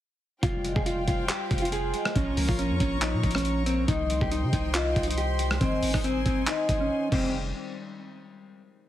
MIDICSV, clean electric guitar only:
0, 0, Header, 1, 2, 480
1, 0, Start_track
1, 0, Key_signature, -4, "minor"
1, 0, Tempo, 431655
1, 477, Time_signature, 4, 2, 24, 8
1, 9885, End_track
2, 0, Start_track
2, 0, Title_t, "Clean electric guitar"
2, 0, Program_c, 0, 27
2, 478, Note_on_c, 0, 65, 90
2, 823, Note_off_c, 0, 65, 0
2, 848, Note_on_c, 0, 68, 71
2, 931, Note_off_c, 0, 68, 0
2, 956, Note_on_c, 0, 65, 91
2, 1137, Note_off_c, 0, 65, 0
2, 1197, Note_on_c, 0, 65, 78
2, 1377, Note_off_c, 0, 65, 0
2, 1436, Note_on_c, 0, 67, 81
2, 1782, Note_off_c, 0, 67, 0
2, 1803, Note_on_c, 0, 65, 80
2, 1888, Note_off_c, 0, 65, 0
2, 1917, Note_on_c, 0, 68, 82
2, 2368, Note_off_c, 0, 68, 0
2, 2397, Note_on_c, 0, 61, 102
2, 2742, Note_off_c, 0, 61, 0
2, 2762, Note_on_c, 0, 65, 89
2, 2848, Note_off_c, 0, 65, 0
2, 2877, Note_on_c, 0, 61, 82
2, 3057, Note_off_c, 0, 61, 0
2, 3115, Note_on_c, 0, 61, 96
2, 3296, Note_off_c, 0, 61, 0
2, 3357, Note_on_c, 0, 63, 81
2, 3702, Note_off_c, 0, 63, 0
2, 3722, Note_on_c, 0, 61, 75
2, 4055, Note_off_c, 0, 61, 0
2, 4073, Note_on_c, 0, 60, 82
2, 4255, Note_off_c, 0, 60, 0
2, 4315, Note_on_c, 0, 63, 95
2, 4661, Note_off_c, 0, 63, 0
2, 4688, Note_on_c, 0, 67, 78
2, 4771, Note_off_c, 0, 67, 0
2, 4798, Note_on_c, 0, 63, 90
2, 4978, Note_off_c, 0, 63, 0
2, 5037, Note_on_c, 0, 63, 81
2, 5218, Note_off_c, 0, 63, 0
2, 5278, Note_on_c, 0, 65, 92
2, 5623, Note_off_c, 0, 65, 0
2, 5644, Note_on_c, 0, 63, 75
2, 5729, Note_off_c, 0, 63, 0
2, 5757, Note_on_c, 0, 67, 82
2, 6209, Note_off_c, 0, 67, 0
2, 6238, Note_on_c, 0, 60, 96
2, 6583, Note_off_c, 0, 60, 0
2, 6606, Note_on_c, 0, 63, 85
2, 6690, Note_off_c, 0, 63, 0
2, 6716, Note_on_c, 0, 60, 85
2, 6897, Note_off_c, 0, 60, 0
2, 6959, Note_on_c, 0, 60, 85
2, 7139, Note_off_c, 0, 60, 0
2, 7200, Note_on_c, 0, 63, 87
2, 7544, Note_off_c, 0, 63, 0
2, 7567, Note_on_c, 0, 61, 75
2, 7897, Note_off_c, 0, 61, 0
2, 7919, Note_on_c, 0, 60, 86
2, 8141, Note_off_c, 0, 60, 0
2, 9885, End_track
0, 0, End_of_file